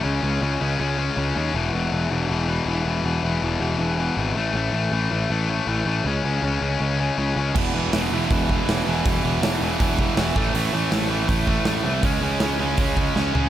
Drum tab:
CC |--------|--------|--------|--------|
HH |--------|--------|--------|--------|
SD |--------|--------|--------|--------|
FT |--------|--------|--------|--------|
BD |--------|--------|--------|--------|

CC |--------|x-------|--------|--------|
HH |--------|--o-o-o-|o-o-o-o-|o-o-o-o-|
SD |--------|--o---o-|--o---o-|--o---o-|
FT |--------|--------|--------|--------|
BD |--------|o---oo--|o---oo-o|----oo--|

CC |--------|
HH |o-o-o---|
SD |--o---o-|
FT |-------o|
BD |o---oo--|